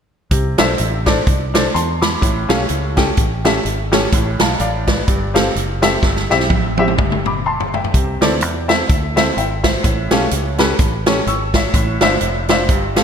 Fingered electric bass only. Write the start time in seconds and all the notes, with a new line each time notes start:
0.32 C2
0.59 B1
0.80 A1
1.27 C2
1.75 E2
2.23 A1
2.50 B1
2.70 C#2
3.18 A1
3.65 G#1
4.13 A1
4.41 B1
4.60 A1
5.08 G1
5.55 F#1
6.03 G1
6.31 B1
6.50 A1
6.99 G1
7.46 F1
7.94 C2
8.22 D2
8.42 E2
8.89 D2
9.37 G#1
9.84 A1
10.12 B1
10.32 C#2
10.79 A1
11.27 G#1
11.74 A1
12.01 G1
12.21 F1
12.69 G1